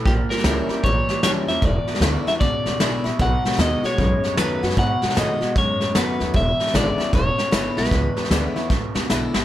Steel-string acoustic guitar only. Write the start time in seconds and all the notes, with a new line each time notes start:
0.07 A#2
0.44 E3 G3 C#4 E4
0.69 C#4 E4
0.86 E3
1.23 E3 G3 C#4 E4
1.48 C#4 E4
1.63 E2
2.01 D3 G#3 B3 E4
2.27 B3 E4
2.41 B2
2.80 D3 G#3 B3 E4
3.04 B3 E4
3.19 B2
3.57 D#3 A3 B3 F#4
3.83 B3 F#4
3.98 F#2
4.38 D#3 A3 B3 F#4
4.63 B3 F#4
4.77 B2
5.15 D#3 A3 B3 F#4
5.41 B3 F#4
5.57 F#2
5.95 D#3 A3 B3 F#4
6.34 E2
6.74 D3 G#3 B3 E4
6.98 B3 E4
7.13 B2
7.51 D3 G#3 B3 E4
7.77 B3 E4
7.92 E2
8.32 D3 G#3 B3 E4
8.56 B3 E4
8.71 B2
9.10 D3 G#3 B3 E4
9.34 B3 E4